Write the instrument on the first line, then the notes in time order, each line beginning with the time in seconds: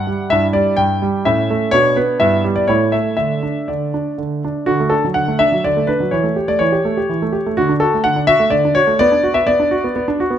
grand piano
Already playing: D4 E4 F#5
0.07 G3
0.30 G2 D4 E4 E5
0.53 G3 D5
0.76 G2 G5
1.02 G3
1.25 A2 C#4 E4 E5
1.50 A3
1.71 B2 B3 D4 C#5
1.96 B3 B4
2.20 G2 B3 E4 E5
2.44 G3
2.56 D5
2.68 A2 A3 E4 C#5
2.92 A3 E5
3.17 D3 A3 D4 E5
3.43 D4
3.68 D3 D5
3.94 D4
4.18 D3
4.45 D4
4.66 D3 F#4
4.80 A3
4.90 D4 A4
5.04 F#3
5.14 D3 F#5
5.28 A3
5.39 D4 E5
5.52 F#3
5.64 D3 D5
5.77 A3
5.87 D4 B4
6.00 F#3
6.11 E3 C#5
6.23 A3
6.36 G4
6.48 A3 D5
6.59 E3 C#5
6.72 G4
6.85 A3
6.97 G4
7.09 E3
7.22 A3
7.33 G4
7.46 A3
7.57 D3 F#4
7.69 D4
7.80 F#4 A4
7.94 A3
8.04 D3 F#5
8.16 D4
8.27 F#4 E5
8.40 A3
8.50 D3 D5
8.65 D4
8.75 F#4 C#5
8.87 A3
8.99 B3 D5
9.12 D4
9.23 F#4
9.34 B3 E5
9.47 B3 D5
9.60 D4
9.71 F#4
9.84 B3
9.96 B3
10.08 D4
10.20 F#4
10.30 B3